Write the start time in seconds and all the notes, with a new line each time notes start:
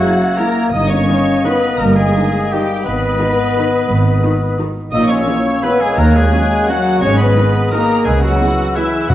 Already playing: F#3 A#3 F#4 E5 F#5 G#6
0.02 G#3 E4
0.37 G#3 A#3 E4 A#4 A#5
0.72 G1 G2 A#3 D#4 D#5 D#6
0.89 C#4 C#5 C#6
1.09 D#3 D#4
1.45 D#3 B3 D#4 B4 B5
1.78 G1 G2 A#3 A#4 A#5
1.96 G#3 G#4 G#5
2.16 D#3 D#4
2.45 G#5
2.51 D#3 G3 D#4 G4 G5
2.84 G#1 G#2 B3 B4 D#5 B5 D#6
3.20 D#3 D#4
3.56 D#3 D#4
3.89 G#1 G#2
4.24 D#3 D#4
4.59 D#3 D#4
4.91 A#1 A#2 A#3 D#4 C#5 D#5 D#6 E6
5.09 C#4 C#5 C#6
5.27 E3 C#4
5.63 E3 B3 C#4 B4 B5
5.79 G#3 G#4 G#5
5.97 D#2 A#3 A#4 A#5 F#6
6.14 G#3 G#4 G#5
6.33 F#3 C#4
6.67 F#3 C#4 F#4 F#5
7.01 G#1 G#2 G#3 C#4 C#5 D#5 C#6 D#6
7.18 B3 B4 B5
7.37 D#3 D#4
7.71 D#3 A#3 D#4 A#4 A#5
8.04 C#2 C#3 G#3 G#4 B4 G#5 E6
8.20 F#3 F#4 F#5
8.40 E3 B3
8.75 E3 B3 E4 E5
9.09 F#1 F#2 F#3 F#4 F#5 D#6